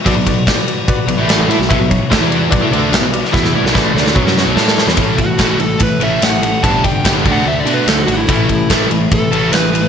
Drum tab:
CC |----------------|----------------|----------------|----------------|
RD |x-x-x-x-x-x-x-x-|x-x-x-x-x-x-x-x-|----------------|x-x-x-x-x-x-x-x-|
SD |----o-------o--o|----o-------o--o|oo-oo-oo-oo-oooo|----o-------o---|
BD |o-o-o---o-------|o-o-o---o-------|o---o---o-------|o-o-o---o-------|

CC |------x---------|----------------|
RD |x-x-x-----x-x-x-|x-x-x-x-x-x-x-x-|
SD |----o-------o---|----o-------o---|
BD |o-o-o-o---------|o-o-o---o-------|